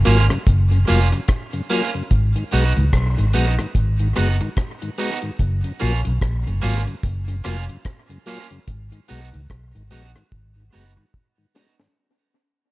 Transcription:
0.05 fingered electric bass G#1, tonewheel organ F#3 A#3 F4, clean electric guitar A#3 C#4 F4, closed hi-hat
0.29 tonewheel organ F#2 C#3, cross-stick, closed hi-hat
0.47 fingered electric bass F#1, kick, closed hi-hat
0.71 tonewheel organ F#2 C#3, closed hi-hat
0.87 fingered electric bass F1, tonewheel organ F#3 A#3 F4, clean electric guitar A#3 C#4 F4, closed hi-hat
1.12 tonewheel organ F#2 C#3, muted clean electric guitar stroke, closed hi-hat
1.28 kick, cross-stick, closed hi-hat
1.53 tonewheel organ F#2 C#3, closed hi-hat
1.69 tonewheel organ F#3 A#3 F4, clean electric guitar A#3 C#4 F4, open hi-hat
1.94 tonewheel organ F#2 C#3, closed hi-hat
2.11 fingered electric bass G#1, kick, closed hi-hat
2.36 tonewheel organ G#2 D#3, closed hi-hat
2.51 fingered electric bass B1, tonewheel organ G#3 B3 F#4, clean electric guitar B3 D#4 F#4, closed hi-hat
2.76 fingered electric bass C#2, tonewheel organ G#2 D#3, closed hi-hat
2.93 fingered electric bass B1, kick, cross-stick, closed hi-hat
3.18 fingered electric bass G#1, tonewheel organ G#2 D#3, closed hi-hat
3.33 fingered electric bass A#1, tonewheel organ G#3 B3 F#4, clean electric guitar B3 D#4 F#4, closed hi-hat
3.58 tonewheel organ G#2 D#3, cross-stick, closed hi-hat
3.75 fingered electric bass G#1, kick, closed hi-hat
3.99 tonewheel organ G#2 D#3, closed hi-hat
4.16 fingered electric bass F#1, tonewheel organ G#3 B3 F#4, clean electric guitar B3 D#4 F#4, cross-stick, closed hi-hat
4.41 tonewheel organ G#2 D#3, muted clean electric guitar stroke, closed hi-hat
4.57 kick, cross-stick, closed hi-hat
4.82 tonewheel organ G#2 D#3, closed hi-hat
4.98 tonewheel organ G#3 B3 F#4, clean electric guitar B3 D#4 F#4, open hi-hat
5.22 tonewheel organ G#2 D#3, closed hi-hat
5.39 fingered electric bass F#1, kick, closed hi-hat
5.64 tonewheel organ F#2 C#3, closed hi-hat
5.80 fingered electric bass A#1, tonewheel organ F#3 A#3 F4, clean electric guitar A#3 C#4 F4, closed hi-hat
6.05 fingered electric bass B1, tonewheel organ F#2 C#3, closed hi-hat
6.21 fingered electric bass A#1, kick, cross-stick, closed hi-hat
6.46 fingered electric bass F#1, tonewheel organ F#2 C#3, closed hi-hat
6.62 fingered electric bass G#1, tonewheel organ F#3 A#3 F4, clean electric guitar A#3 C#4 F4, closed hi-hat
6.87 tonewheel organ F#2 C#3, closed hi-hat
7.03 fingered electric bass F#1, kick, closed hi-hat
7.28 tonewheel organ F#2 C#3, closed hi-hat
7.44 fingered electric bass F1, tonewheel organ F#3 A#3 F4, clean electric guitar A#3 C#4 F4, cross-stick, closed hi-hat
7.69 tonewheel organ F#2 C#3, closed hi-hat
7.85 kick, cross-stick, closed hi-hat
8.09 tonewheel organ F#2 C#3, closed hi-hat
8.26 tonewheel organ F#3 A#3 F4, clean electric guitar A#3 C#4 F4, open hi-hat
8.50 tonewheel organ F#2 C#3, closed hi-hat
8.68 fingered electric bass G#1, kick, closed hi-hat
8.92 tonewheel organ G#2 D#3, closed hi-hat
9.08 fingered electric bass B1, tonewheel organ G#3 B3 F#4, clean electric guitar B3 D#4 F#4, closed hi-hat
9.33 fingered electric bass C#2, tonewheel organ G#2 D#3, closed hi-hat
9.50 fingered electric bass B1, kick, cross-stick, closed hi-hat
9.75 fingered electric bass G#1, tonewheel organ G#2 D#3, closed hi-hat
9.90 fingered electric bass A#1, tonewheel organ G#3 B3 F#4, clean electric guitar B3 D#4 F#4, closed hi-hat
10.15 tonewheel organ G#2 D#3, cross-stick, closed hi-hat
10.32 fingered electric bass G#1, kick
10.56 tonewheel organ G#2 D#3
10.72 fingered electric bass F#1, tonewheel organ G#3 B3 F#4, clean electric guitar B3 D#4 F#4
10.97 tonewheel organ G#2 D#3, muted clean electric guitar stroke
11.14 kick
11.38 tonewheel organ G#2 D#3
11.54 tonewheel organ G#3 B3 F#4, clean electric guitar B3 D#4 F#4, snare
11.79 tonewheel organ G#2 D#3, snare

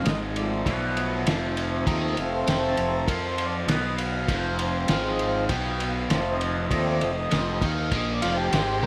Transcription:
0.05 fingered electric bass G#1, overdriven electric guitar G#2 G#3, harmonium D#5, snare, ride
0.36 harmonium F3 A3 D5, ride
0.65 fingered electric bass B1, overdriven electric guitar B2 B3, kick, ride
0.97 ride
1.25 fingered electric bass F1, overdriven electric guitar F2 F3, snare, ride
1.57 ride
1.86 fingered electric bass D#2, overdriven electric guitar D#3 D#4, harmonium F3 A3 C4 D#5, kick, ride
2.16 fingered electric bass F1, overdriven electric guitar F2, harmonium F3 A3 C4 F5, ride
2.47 fingered electric bass F1, overdriven electric guitar F2 F3, harmonium G5, snare, ride
2.67 harmonium A5
2.77 fingered electric bass F1, overdriven electric guitar F2, ride
2.87 harmonium A#5
3.06 fingered electric bass F2, overdriven electric guitar F3 F4, harmonium A#4, kick, ride
3.26 harmonium C5
3.38 ride
3.45 harmonium D5
3.66 fingered electric bass B1, overdriven electric guitar B2 B3, harmonium D#5, snare, ride
3.98 harmonium F5, ride
4.28 fingered electric bass F1, overdriven electric guitar F2 F3, kick, ride
4.57 harmonium F3 C4, ride
4.88 fingered electric bass G#1, overdriven electric guitar G#2 G#3, harmonium F5, snare, ride
5.08 harmonium D#5
5.19 ride
5.27 harmonium F5
5.48 fingered electric bass B1, overdriven electric guitar B2 B3, harmonium G5, kick, ride
5.80 ride
5.87 harmonium F5
6.08 fingered electric bass F1, overdriven electric guitar F2 F3, harmonium F3 A3 C4, snare, ride
6.31 harmonium D#5
6.41 ride
6.70 fingered electric bass D#2, overdriven electric guitar D#3 D#4, harmonium F3 A3 C4 D5, kick, ride
7.01 fingered electric bass F1, overdriven electric guitar F2, harmonium D#5, ride
7.31 fingered electric bass F1, overdriven electric guitar F2 F3, snare, ride
7.62 fingered electric bass D#2, overdriven electric guitar D#3 D#4, harmonium F5, kick, ride
7.92 fingered electric bass A#1, overdriven electric guitar A#2 A#3, harmonium D#5, kick, ride
8.14 harmonium D5
8.22 fingered electric bass F1, overdriven electric guitar F2 F3, transistor combo organ F4, ride
8.32 harmonium C5
8.37 transistor combo organ G4
8.52 fingered electric bass G#1, overdriven electric guitar G#2 G#3, snare, ride
8.82 fingered electric bass D#2, overdriven electric guitar D#3 D#4, transistor combo organ A#4, high tom

